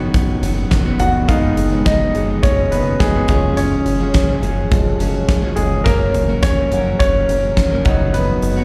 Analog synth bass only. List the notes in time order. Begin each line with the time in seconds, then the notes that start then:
0.14 F#1
0.42 F#1
0.71 F#1
0.99 F#1
1.29 F#1
1.57 F#1
1.86 F#1
2.14 F#1
2.43 F#1
2.71 F#1
3.00 F#1
3.29 F#1
3.86 F#1
4.14 F#1
4.42 F#1
4.72 F#1
5.00 F#1
5.29 F#1
5.57 F#1
5.86 F#1
6.14 F#1
6.43 F#1
6.71 F#1
7.00 F#1
7.28 F#1
7.57 F#1
7.86 F#1
8.42 F#1